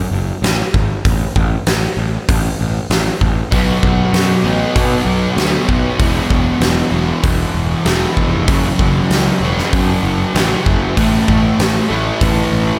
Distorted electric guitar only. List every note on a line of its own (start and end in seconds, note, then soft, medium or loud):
3.51 4.42 B2 medium
3.51 4.43 F#3 medium
3.51 4.43 B3 medium
4.44 5.35 B2 medium
4.44 5.36 F#3 medium
4.44 5.35 B3 medium
5.36 5.97 B2 medium
5.36 5.98 F#3 medium
5.36 5.99 B3 medium
5.99 6.91 E2 medium
5.99 6.92 B2 medium
5.99 6.92 E3 medium
6.92 7.84 E2 medium
6.92 7.85 B2 medium
6.92 7.88 E3 medium
7.85 8.46 E2 medium
7.85 8.47 B2 medium
7.85 8.50 E3 medium
8.47 9.39 F#2 medium
8.47 9.40 C#3 medium
8.47 9.40 F#3 loud
9.41 10.33 F#2 medium
9.41 10.34 C#3 medium
9.41 10.33 F#3 medium
10.34 10.95 F#2 medium
10.34 10.95 C#3 medium
10.34 10.96 F#3 medium
10.95 11.87 A2 medium
10.95 11.89 E3 medium
10.95 11.88 A3 loud
11.89 12.79 A2 medium
11.89 12.79 E3 medium
11.89 12.79 A3 medium